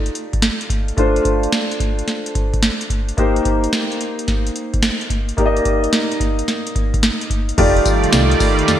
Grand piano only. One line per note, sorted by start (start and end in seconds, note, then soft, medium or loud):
0.00 0.93 A3 medium
0.00 0.94 D#4 medium
0.00 0.94 F4 medium
0.00 0.94 G4 medium
0.00 0.94 D5 medium
0.97 3.13 A3 medium
0.97 3.14 D4 medium
0.97 3.14 F4 medium
0.97 3.15 C5 medium
3.17 5.34 A#3 medium
3.17 5.34 D#4 medium
3.17 5.34 G4 medium
3.17 5.35 C5 medium
5.37 7.53 A#3 medium
5.37 7.54 D#4 medium
5.37 7.54 G4 medium
5.37 5.47 D5 medium
5.46 7.58 D#5 medium
7.58 8.56 A3 medium
7.58 8.56 D#4 medium
7.58 8.57 F4 medium
7.58 8.57 G4 medium
7.58 8.57 D5 loud